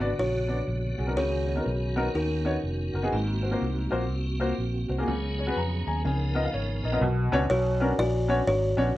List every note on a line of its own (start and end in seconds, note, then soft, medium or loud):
0.00 0.11 G#1 medium
0.00 1.13 C#3 soft
0.00 1.13 D3 medium
0.00 1.13 B3 soft
0.00 0.10 D4 medium
0.00 0.15 F#4 medium
0.00 1.13 F#4 medium
0.00 0.10 F#4 medium
0.00 0.22 D5 medium
0.00 0.10 D5 medium
0.19 0.60 A#1 medium
0.19 1.13 F#4 medium
0.19 1.16 C#5 medium
0.48 0.58 B3 medium
0.48 0.58 D4 medium
0.48 0.59 F#4 medium
0.48 0.59 D5 medium
0.68 0.94 A#1 medium
0.98 1.17 B1 medium
0.98 1.03 F#4 soft
0.98 1.03 G#4 soft
1.07 1.16 B3 medium
1.07 1.17 D4 medium
1.07 1.17 F#4 medium
1.07 1.17 A#4 medium
1.16 1.58 C#2 medium
1.16 1.92 C#3 medium
1.16 3.08 D#3 medium
1.16 3.08 B3 medium
1.16 3.08 C#4 medium
1.16 3.08 F#4 medium
1.16 2.11 F#4 medium
1.16 2.11 G#4 medium
1.16 2.18 C#5 medium
1.46 1.52 F#4 soft
1.46 1.52 C#5 soft
1.56 1.66 B3 medium
1.56 1.66 D#4 medium
1.56 1.66 F#4 medium
1.56 1.66 A#4 medium
1.66 2.07 B1 medium
1.96 2.06 B3 medium
1.96 2.06 D#4 medium
1.96 2.06 F#4 medium
1.96 2.06 A#4 medium
2.15 2.56 D#2 medium
2.15 3.09 D#4 medium
2.15 3.09 F#4 soft
2.15 2.90 A#4 medium
2.45 2.54 B3 medium
2.45 2.55 D#4 medium
2.45 2.55 F#4 medium
2.45 2.55 C#5 medium
2.63 2.89 F1 medium
2.94 3.10 F#1 medium
2.94 2.99 F#4 soft
2.94 2.99 A#4 medium
3.03 3.12 B3 medium
3.03 3.12 D#4 medium
3.03 3.13 F#4 medium
3.03 3.13 G#4 medium
3.12 3.54 G#1 medium
3.12 3.88 G#2 medium
3.12 5.04 A#3 medium
3.12 5.04 C4 medium
3.12 3.20 F4 medium
3.18 5.07 F#4 medium
3.42 3.47 F#4 soft
3.42 3.48 C5 medium
3.51 3.61 A#3 medium
3.51 3.62 F4 medium
3.51 3.62 F#4 medium
3.51 3.62 C5 medium
3.61 3.87 C2 medium
3.91 4.10 A#1 medium
3.91 4.01 A#3 medium
3.91 4.01 F4 medium
3.91 4.01 F#4 medium
3.91 4.01 C5 medium
4.10 4.51 C2 medium
4.40 4.50 A#3 medium
4.40 4.50 F4 medium
4.40 4.50 F#4 medium
4.40 4.50 C5 medium
4.58 4.85 A#1 medium
4.88 5.05 C2 medium
4.88 4.94 F#4 soft
4.88 4.94 C5 soft
4.98 5.08 A#3 medium
4.98 5.08 F4 medium
4.98 5.08 F#4 medium
4.98 5.08 G#4 medium
5.07 5.49 C#2 medium
5.07 5.83 C#3 medium
5.07 6.03 F#3 medium
5.07 6.03 B3 medium
5.07 6.03 C#4 medium
5.07 6.03 G#4 medium
5.38 5.43 G#4 soft
5.38 5.43 C#5 medium
5.47 5.57 B3 medium
5.47 5.57 F#4 medium
5.47 5.57 G#4 medium
5.47 5.57 B4 medium
5.57 5.82 F2 medium
5.57 5.86 A#5 medium
5.87 6.02 D#2 medium
5.87 6.04 G#5 medium
5.87 6.04 A#5 medium
6.04 6.46 C#2 medium
6.04 6.80 C#3 medium
6.04 7.00 F3 medium
6.04 7.00 B3 medium
6.04 7.00 D#4 medium
6.04 7.00 A#4 medium
6.04 6.42 G#5 medium
6.35 6.45 B3 medium
6.35 6.45 F4 medium
6.35 6.45 A#4 medium
6.35 6.45 D#5 medium
6.45 6.53 F5 medium
6.54 6.79 G#1 medium
6.54 6.99 C#5 medium
6.84 6.99 A#1 medium
6.84 6.89 A#4 soft
6.84 6.89 D#5 medium
6.92 7.02 B3 medium
6.92 7.02 F4 medium
6.92 7.02 A#4 medium
6.92 7.02 D#5 medium
7.01 7.27 B1 loud
7.01 7.77 B2 medium
7.32 7.48 C#2 medium
7.32 7.42 B3 medium
7.32 7.42 C#4 medium
7.32 7.42 D4 medium
7.32 7.42 F#4 medium
7.32 7.42 C#5 medium
7.50 7.92 B1 loud
7.50 7.98 F#4 medium
7.50 8.00 C#5 medium
7.80 7.90 B3 medium
7.80 7.90 C#4 medium
7.80 7.90 D4 medium
7.80 7.90 F#4 medium
7.80 7.91 A#4 medium
7.98 8.40 A#1 medium
7.98 8.47 F#4 medium
7.98 8.49 D5 loud
8.28 8.38 B3 medium
8.28 8.38 C#4 medium
8.28 8.38 D4 medium
8.28 8.39 F#4 medium
8.28 8.39 C#5 medium
8.47 8.73 G#1 medium
8.47 8.93 F#4 medium
8.47 8.95 C#5 medium
8.77 8.93 A#1 loud
8.77 8.87 B3 medium
8.77 8.87 C#4 medium
8.77 8.87 D4 medium
8.77 8.87 F#4 medium
8.77 8.87 C#5 medium